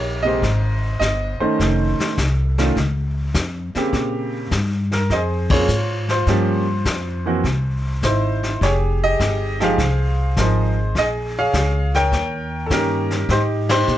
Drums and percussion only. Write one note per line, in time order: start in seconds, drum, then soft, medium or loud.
0.42 brush sweep soft
0.42 kick soft
0.42 snare soft
1.01 kick soft
1.01 snare medium
1.01 hi-hat pedal soft
1.59 brush sweep soft
1.59 kick soft
1.59 snare soft
2.00 snare soft
2.18 kick soft
2.18 snare medium
2.18 hi-hat pedal soft
2.58 snare soft
2.76 brush sweep soft
2.76 kick soft
2.76 snare soft
3.34 kick soft
3.34 snare medium
3.34 hi-hat pedal soft
3.75 snare soft
3.93 brush sweep soft
3.93 kick soft
3.93 snare soft
4.51 kick soft
4.51 snare medium
4.51 hi-hat pedal medium
4.92 snare soft
5.10 brush sweep soft
5.10 kick soft
5.10 snare soft
5.50 kick medium
5.50 ride medium
5.68 hi-hat pedal medium
6.08 snare soft
6.27 brush sweep soft
6.27 kick soft
6.27 snare soft
6.85 kick soft
6.85 snare medium
6.85 hi-hat pedal medium
7.44 brush sweep soft
7.44 kick soft
7.44 snare soft
8.03 kick soft
8.03 snare medium
8.03 hi-hat pedal medium
8.43 snare soft
8.61 brush sweep soft
8.61 kick soft
8.61 snare soft
9.20 kick soft
9.20 snare medium
9.20 hi-hat pedal soft
9.60 snare soft
9.78 brush sweep soft
9.78 kick soft
9.78 snare soft
10.36 kick soft
10.36 snare medium
10.36 hi-hat pedal soft
10.95 brush sweep soft
10.95 kick soft
10.95 snare soft
11.53 kick soft
11.53 snare medium
11.53 hi-hat pedal medium
11.94 snare soft
12.12 brush sweep soft
12.12 kick soft
12.12 snare soft
12.70 kick soft
12.70 snare medium
12.70 hi-hat pedal medium
13.10 snare soft
13.29 brush sweep soft
13.29 kick soft
13.29 snare soft
13.69 snare medium
13.69 ride medium
13.87 hi-hat pedal soft